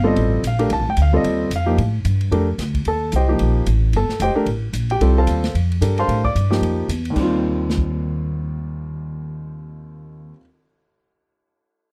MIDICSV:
0, 0, Header, 1, 5, 480
1, 0, Start_track
1, 0, Tempo, 268817
1, 1250, Time_signature, 4, 2, 24, 8
1, 21284, End_track
2, 0, Start_track
2, 0, Title_t, "Grand piano"
2, 0, Program_c, 0, 0
2, 63, Note_on_c, 0, 55, 66
2, 72, Note_on_c, 0, 60, 62
2, 74, Note_on_c, 0, 65, 58
2, 75, Note_on_c, 0, 69, 73
2, 127, Note_on_c, 0, 75, 77
2, 715, Note_off_c, 0, 55, 0
2, 719, Note_off_c, 0, 60, 0
2, 720, Note_off_c, 0, 65, 0
2, 721, Note_off_c, 0, 69, 0
2, 739, Note_off_c, 0, 75, 0
2, 844, Note_on_c, 0, 77, 74
2, 1052, Note_on_c, 0, 62, 57
2, 1056, Note_on_c, 0, 57, 65
2, 1058, Note_on_c, 0, 70, 72
2, 1060, Note_on_c, 0, 67, 61
2, 1228, Note_off_c, 0, 62, 0
2, 1231, Note_off_c, 0, 57, 0
2, 1232, Note_off_c, 0, 70, 0
2, 1233, Note_off_c, 0, 67, 0
2, 1256, Note_off_c, 0, 77, 0
2, 1300, Note_on_c, 0, 81, 89
2, 1554, Note_off_c, 0, 81, 0
2, 1603, Note_on_c, 0, 79, 80
2, 1759, Note_off_c, 0, 79, 0
2, 1819, Note_on_c, 0, 77, 77
2, 2018, Note_on_c, 0, 55, 60
2, 2028, Note_on_c, 0, 60, 58
2, 2029, Note_on_c, 0, 65, 57
2, 2032, Note_on_c, 0, 69, 71
2, 2054, Note_off_c, 0, 77, 0
2, 2080, Note_on_c, 0, 75, 85
2, 2653, Note_off_c, 0, 55, 0
2, 2658, Note_off_c, 0, 60, 0
2, 2658, Note_off_c, 0, 65, 0
2, 2660, Note_off_c, 0, 69, 0
2, 2677, Note_off_c, 0, 75, 0
2, 2780, Note_on_c, 0, 77, 77
2, 2965, Note_on_c, 0, 58, 55
2, 2969, Note_on_c, 0, 53, 60
2, 2973, Note_on_c, 0, 67, 69
2, 2974, Note_on_c, 0, 63, 53
2, 3146, Note_off_c, 0, 58, 0
2, 3148, Note_off_c, 0, 53, 0
2, 3150, Note_off_c, 0, 63, 0
2, 3150, Note_off_c, 0, 67, 0
2, 3185, Note_off_c, 0, 77, 0
2, 4134, Note_on_c, 0, 57, 61
2, 4139, Note_on_c, 0, 62, 54
2, 4142, Note_on_c, 0, 67, 56
2, 4142, Note_on_c, 0, 70, 64
2, 4390, Note_off_c, 0, 57, 0
2, 4393, Note_off_c, 0, 62, 0
2, 4395, Note_off_c, 0, 67, 0
2, 4395, Note_off_c, 0, 70, 0
2, 5139, Note_on_c, 0, 81, 81
2, 5142, Note_on_c, 0, 69, 66
2, 5564, Note_off_c, 0, 81, 0
2, 5565, Note_off_c, 0, 69, 0
2, 5638, Note_on_c, 0, 72, 59
2, 5641, Note_on_c, 0, 79, 73
2, 5643, Note_on_c, 0, 75, 60
2, 5647, Note_on_c, 0, 67, 56
2, 5848, Note_off_c, 0, 67, 0
2, 5865, Note_on_c, 0, 53, 62
2, 5870, Note_on_c, 0, 58, 55
2, 5871, Note_on_c, 0, 63, 54
2, 5875, Note_on_c, 0, 67, 67
2, 5884, Note_off_c, 0, 72, 0
2, 5885, Note_off_c, 0, 79, 0
2, 5886, Note_off_c, 0, 75, 0
2, 6497, Note_off_c, 0, 53, 0
2, 6499, Note_off_c, 0, 58, 0
2, 6499, Note_off_c, 0, 63, 0
2, 6501, Note_off_c, 0, 67, 0
2, 7080, Note_on_c, 0, 81, 86
2, 7087, Note_on_c, 0, 69, 70
2, 7495, Note_off_c, 0, 81, 0
2, 7499, Note_off_c, 0, 69, 0
2, 7536, Note_on_c, 0, 79, 84
2, 7552, Note_on_c, 0, 67, 63
2, 7552, Note_on_c, 0, 75, 64
2, 7555, Note_on_c, 0, 72, 63
2, 7695, Note_off_c, 0, 79, 0
2, 7706, Note_off_c, 0, 67, 0
2, 7706, Note_off_c, 0, 75, 0
2, 7708, Note_off_c, 0, 72, 0
2, 7769, Note_on_c, 0, 57, 66
2, 7776, Note_on_c, 0, 62, 60
2, 7781, Note_on_c, 0, 67, 62
2, 7789, Note_on_c, 0, 70, 72
2, 7948, Note_off_c, 0, 57, 0
2, 7952, Note_off_c, 0, 62, 0
2, 7954, Note_off_c, 0, 67, 0
2, 7958, Note_off_c, 0, 70, 0
2, 8769, Note_on_c, 0, 79, 82
2, 8783, Note_on_c, 0, 67, 65
2, 8952, Note_on_c, 0, 65, 51
2, 8953, Note_on_c, 0, 55, 53
2, 8955, Note_on_c, 0, 60, 50
2, 8957, Note_on_c, 0, 69, 64
2, 9202, Note_off_c, 0, 79, 0
2, 9209, Note_off_c, 0, 67, 0
2, 9230, Note_off_c, 0, 69, 0
2, 9254, Note_on_c, 0, 72, 61
2, 9254, Note_on_c, 0, 81, 80
2, 9257, Note_on_c, 0, 69, 62
2, 9268, Note_on_c, 0, 77, 59
2, 9652, Note_off_c, 0, 65, 0
2, 9653, Note_off_c, 0, 55, 0
2, 9653, Note_off_c, 0, 60, 0
2, 9865, Note_off_c, 0, 72, 0
2, 9865, Note_off_c, 0, 81, 0
2, 9866, Note_off_c, 0, 69, 0
2, 9872, Note_off_c, 0, 77, 0
2, 10383, Note_on_c, 0, 62, 46
2, 10384, Note_on_c, 0, 69, 50
2, 10386, Note_on_c, 0, 67, 49
2, 10390, Note_on_c, 0, 70, 58
2, 10693, Note_on_c, 0, 81, 69
2, 10704, Note_on_c, 0, 84, 90
2, 10713, Note_on_c, 0, 72, 70
2, 10714, Note_on_c, 0, 77, 69
2, 11088, Note_off_c, 0, 62, 0
2, 11089, Note_off_c, 0, 67, 0
2, 11089, Note_off_c, 0, 69, 0
2, 11091, Note_off_c, 0, 70, 0
2, 11125, Note_off_c, 0, 81, 0
2, 11131, Note_off_c, 0, 84, 0
2, 11135, Note_off_c, 0, 72, 0
2, 11136, Note_off_c, 0, 77, 0
2, 11151, Note_on_c, 0, 86, 83
2, 11159, Note_on_c, 0, 74, 67
2, 11615, Note_on_c, 0, 53, 63
2, 11615, Note_on_c, 0, 58, 56
2, 11617, Note_on_c, 0, 63, 54
2, 11626, Note_on_c, 0, 67, 73
2, 11773, Note_off_c, 0, 86, 0
2, 11777, Note_off_c, 0, 74, 0
2, 12253, Note_off_c, 0, 53, 0
2, 12253, Note_off_c, 0, 58, 0
2, 12254, Note_off_c, 0, 63, 0
2, 12258, Note_off_c, 0, 67, 0
2, 12683, Note_on_c, 0, 39, 62
2, 12740, Note_on_c, 0, 51, 54
2, 12790, Note_on_c, 0, 55, 57
2, 12850, Note_on_c, 0, 60, 55
2, 12897, Note_on_c, 0, 65, 67
2, 18381, Note_off_c, 0, 39, 0
2, 18437, Note_off_c, 0, 51, 0
2, 18487, Note_off_c, 0, 55, 0
2, 18547, Note_off_c, 0, 60, 0
2, 18594, Note_off_c, 0, 65, 0
2, 21284, End_track
3, 0, Start_track
3, 0, Title_t, "Upright bass"
3, 0, Program_c, 1, 32
3, 0, Note_on_c, 1, 31, 89
3, 279, Note_off_c, 1, 31, 0
3, 290, Note_on_c, 1, 33, 82
3, 756, Note_off_c, 1, 33, 0
3, 770, Note_on_c, 1, 34, 82
3, 1236, Note_off_c, 1, 34, 0
3, 1257, Note_on_c, 1, 36, 78
3, 1414, Note_off_c, 1, 36, 0
3, 1414, Note_on_c, 1, 33, 54
3, 1561, Note_off_c, 1, 33, 0
3, 1572, Note_on_c, 1, 29, 67
3, 1720, Note_off_c, 1, 29, 0
3, 1729, Note_on_c, 1, 38, 92
3, 2195, Note_off_c, 1, 38, 0
3, 2212, Note_on_c, 1, 39, 74
3, 2677, Note_off_c, 1, 39, 0
3, 2687, Note_on_c, 1, 41, 85
3, 3154, Note_off_c, 1, 41, 0
3, 3175, Note_on_c, 1, 45, 80
3, 3639, Note_off_c, 1, 45, 0
3, 3655, Note_on_c, 1, 43, 85
3, 4119, Note_off_c, 1, 43, 0
3, 4128, Note_on_c, 1, 41, 77
3, 4595, Note_off_c, 1, 41, 0
3, 4611, Note_on_c, 1, 38, 84
3, 5077, Note_off_c, 1, 38, 0
3, 5108, Note_on_c, 1, 39, 74
3, 5566, Note_off_c, 1, 39, 0
3, 5587, Note_on_c, 1, 36, 84
3, 6045, Note_off_c, 1, 36, 0
3, 6074, Note_on_c, 1, 34, 76
3, 6529, Note_off_c, 1, 34, 0
3, 6544, Note_on_c, 1, 33, 83
3, 7004, Note_off_c, 1, 33, 0
3, 7022, Note_on_c, 1, 31, 77
3, 7284, Note_off_c, 1, 31, 0
3, 7495, Note_on_c, 1, 29, 84
3, 7760, Note_off_c, 1, 29, 0
3, 7959, Note_on_c, 1, 33, 77
3, 8431, Note_off_c, 1, 33, 0
3, 8442, Note_on_c, 1, 34, 77
3, 8913, Note_off_c, 1, 34, 0
3, 8937, Note_on_c, 1, 36, 83
3, 9401, Note_off_c, 1, 36, 0
3, 9420, Note_on_c, 1, 39, 86
3, 9883, Note_off_c, 1, 39, 0
3, 9902, Note_on_c, 1, 41, 77
3, 10364, Note_off_c, 1, 41, 0
3, 10375, Note_on_c, 1, 43, 84
3, 10840, Note_off_c, 1, 43, 0
3, 10855, Note_on_c, 1, 45, 81
3, 11320, Note_off_c, 1, 45, 0
3, 11344, Note_on_c, 1, 43, 82
3, 11800, Note_off_c, 1, 43, 0
3, 11811, Note_on_c, 1, 41, 77
3, 12278, Note_off_c, 1, 41, 0
3, 12289, Note_on_c, 1, 40, 76
3, 12757, Note_off_c, 1, 40, 0
3, 12779, Note_on_c, 1, 39, 79
3, 18405, Note_off_c, 1, 39, 0
3, 21284, End_track
4, 0, Start_track
4, 0, Title_t, "Muted upright bass strokes"
4, 7302, Note_on_c, 9, 29, 36
4, 7480, Note_off_c, 9, 29, 0
4, 7770, Note_on_c, 9, 29, 39
4, 7948, Note_off_c, 9, 29, 0
4, 21284, End_track
5, 0, Start_track
5, 0, Title_t, "Drums"
5, 291, Note_on_c, 9, 51, 54
5, 469, Note_off_c, 9, 51, 0
5, 781, Note_on_c, 9, 44, 52
5, 781, Note_on_c, 9, 51, 66
5, 959, Note_off_c, 9, 44, 0
5, 959, Note_off_c, 9, 51, 0
5, 1056, Note_on_c, 9, 51, 45
5, 1234, Note_off_c, 9, 51, 0
5, 1246, Note_on_c, 9, 51, 59
5, 1425, Note_off_c, 9, 51, 0
5, 1725, Note_on_c, 9, 44, 56
5, 1725, Note_on_c, 9, 51, 69
5, 1903, Note_off_c, 9, 44, 0
5, 1903, Note_off_c, 9, 51, 0
5, 2218, Note_on_c, 9, 51, 60
5, 2397, Note_off_c, 9, 51, 0
5, 2696, Note_on_c, 9, 44, 63
5, 2696, Note_on_c, 9, 51, 69
5, 2875, Note_off_c, 9, 44, 0
5, 2875, Note_off_c, 9, 51, 0
5, 3183, Note_on_c, 9, 51, 55
5, 3361, Note_off_c, 9, 51, 0
5, 3656, Note_on_c, 9, 44, 52
5, 3656, Note_on_c, 9, 51, 62
5, 3834, Note_off_c, 9, 44, 0
5, 3834, Note_off_c, 9, 51, 0
5, 3941, Note_on_c, 9, 51, 43
5, 4119, Note_off_c, 9, 51, 0
5, 4144, Note_on_c, 9, 51, 52
5, 4322, Note_off_c, 9, 51, 0
5, 4620, Note_on_c, 9, 38, 36
5, 4620, Note_on_c, 9, 44, 48
5, 4620, Note_on_c, 9, 51, 57
5, 4798, Note_off_c, 9, 38, 0
5, 4798, Note_off_c, 9, 44, 0
5, 4798, Note_off_c, 9, 51, 0
5, 4901, Note_on_c, 9, 36, 51
5, 4903, Note_on_c, 9, 51, 42
5, 5079, Note_off_c, 9, 36, 0
5, 5082, Note_off_c, 9, 51, 0
5, 5089, Note_on_c, 9, 51, 53
5, 5268, Note_off_c, 9, 51, 0
5, 5569, Note_on_c, 9, 44, 61
5, 5569, Note_on_c, 9, 51, 57
5, 5747, Note_off_c, 9, 44, 0
5, 5747, Note_off_c, 9, 51, 0
5, 6053, Note_on_c, 9, 51, 58
5, 6232, Note_off_c, 9, 51, 0
5, 6542, Note_on_c, 9, 44, 59
5, 6542, Note_on_c, 9, 51, 61
5, 6720, Note_off_c, 9, 44, 0
5, 6720, Note_off_c, 9, 51, 0
5, 7018, Note_on_c, 9, 51, 55
5, 7197, Note_off_c, 9, 51, 0
5, 7307, Note_on_c, 9, 38, 34
5, 7485, Note_off_c, 9, 38, 0
5, 7496, Note_on_c, 9, 44, 48
5, 7496, Note_on_c, 9, 51, 63
5, 7675, Note_off_c, 9, 44, 0
5, 7675, Note_off_c, 9, 51, 0
5, 7969, Note_on_c, 9, 51, 51
5, 8148, Note_off_c, 9, 51, 0
5, 8452, Note_on_c, 9, 44, 54
5, 8452, Note_on_c, 9, 51, 63
5, 8631, Note_off_c, 9, 44, 0
5, 8631, Note_off_c, 9, 51, 0
5, 8747, Note_on_c, 9, 51, 40
5, 8926, Note_off_c, 9, 51, 0
5, 8945, Note_on_c, 9, 51, 58
5, 9123, Note_off_c, 9, 51, 0
5, 9410, Note_on_c, 9, 44, 53
5, 9410, Note_on_c, 9, 51, 62
5, 9589, Note_off_c, 9, 44, 0
5, 9589, Note_off_c, 9, 51, 0
5, 9709, Note_on_c, 9, 38, 43
5, 9709, Note_on_c, 9, 51, 42
5, 9888, Note_off_c, 9, 38, 0
5, 9888, Note_off_c, 9, 51, 0
5, 9912, Note_on_c, 9, 51, 56
5, 10091, Note_off_c, 9, 51, 0
5, 10206, Note_on_c, 9, 51, 42
5, 10385, Note_off_c, 9, 51, 0
5, 10391, Note_on_c, 9, 44, 51
5, 10391, Note_on_c, 9, 51, 70
5, 10569, Note_off_c, 9, 44, 0
5, 10569, Note_off_c, 9, 51, 0
5, 10671, Note_on_c, 9, 51, 42
5, 10850, Note_off_c, 9, 51, 0
5, 10871, Note_on_c, 9, 51, 55
5, 11050, Note_off_c, 9, 51, 0
5, 11150, Note_on_c, 9, 36, 50
5, 11329, Note_off_c, 9, 36, 0
5, 11350, Note_on_c, 9, 44, 51
5, 11350, Note_on_c, 9, 51, 57
5, 11529, Note_off_c, 9, 44, 0
5, 11529, Note_off_c, 9, 51, 0
5, 11641, Note_on_c, 9, 38, 50
5, 11819, Note_off_c, 9, 38, 0
5, 11837, Note_on_c, 9, 51, 53
5, 12016, Note_off_c, 9, 51, 0
5, 12308, Note_on_c, 9, 44, 56
5, 12308, Note_on_c, 9, 51, 63
5, 12487, Note_off_c, 9, 44, 0
5, 12487, Note_off_c, 9, 51, 0
5, 12591, Note_on_c, 9, 51, 43
5, 12769, Note_off_c, 9, 51, 0
5, 12782, Note_on_c, 9, 36, 51
5, 12782, Note_on_c, 9, 49, 57
5, 12960, Note_off_c, 9, 36, 0
5, 12961, Note_off_c, 9, 49, 0
5, 13741, Note_on_c, 9, 38, 53
5, 13885, Note_on_c, 9, 36, 64
5, 13920, Note_off_c, 9, 38, 0
5, 14064, Note_off_c, 9, 36, 0
5, 21284, End_track
0, 0, End_of_file